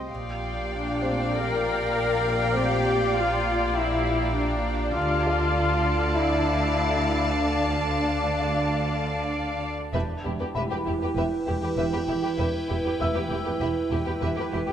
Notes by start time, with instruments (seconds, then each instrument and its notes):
Already playing: felt piano G5
0.09 double bass section A#1, cello section A#2, ambient pad G4 D5 A#5, violin section D5 F5 G5
0.72 viola section D4
1.02 felt piano C4 C5
1.34 viola section A#4
2.53 felt piano C4 C5, viola section G4
3.16 viola section F4
3.76 viola section E4
4.36 viola section D4
4.95 double bass section D2, cello section D3, ambient pad D4 D5 A5, viola section F4, violin section D5 F5 A5
5.27 felt piano D5
6.16 viola section E4
7.40 viola section D4
8.40 felt piano F5
9.94 double bass section E1, cello section E2, ambient pad E4 B4 G5, viola section G4, violin section B4 E5
10.24 double bass section E1, cello section E2, violin section E4 G4, viola section G4
10.39 cello section E2, violin section G4 B4, viola section G4
10.55 double bass section E1, cello section E2, viola section G4, violin section B4 E5, felt piano B5
10.71 cello section E2, violin section G4 B4, viola section G4
10.85 double bass section E1, cello section E2, violin section E4 G4, viola section G4
11.01 cello section E2, violin section G4 B4, viola section G4
11.15 double bass section E1, cello section E2, viola section G4, violin section B4 E5
11.46 double bass section E1, cello section E2, violin section E4 G4, viola section G4
11.62 cello section E2, violin section G4 B4, viola section G4
11.77 double bass section E1, cello section E2, viola section G4, violin section B4 E5
11.92 cello section E2, violin section G4 B4, viola section G4
12.07 double bass section E1, cello section E2, violin section E4 G4, viola section G4
12.21 cello section E2, violin section G4 B4, viola section G4
12.38 double bass section E1, cello section E2, viola section G4, violin section B4 E5
12.68 double bass section E1, cello section E2, violin section E4 G4, viola section G4
12.85 cello section E2, violin section G4 B4, viola section G4
13.00 double bass section E1, cello section E2, viola section G4, violin section B4 E5, felt piano E5 E6
13.15 cello section E2, violin section G4 B4, viola section G4
13.30 double bass section E1, cello section E2, violin section E4 G4, viola section G4
13.45 cello section E2, violin section G4 B4, viola section G4
13.61 double bass section E1, cello section E2, viola section G4, violin section B4 E5
13.91 double bass section E1, cello section E2, violin section E4 G4, viola section G4
14.05 cello section E2, violin section G4 B4, viola section G4
14.21 double bass section E1, cello section E2, viola section G4, violin section B4 E5
14.36 cello section E2, violin section G4, viola section G4
14.40 violin section B4
14.51 double bass section E1, cello section E2, violin section E4 G4, viola section G4
14.67 cello section E2, violin section G4, viola section G4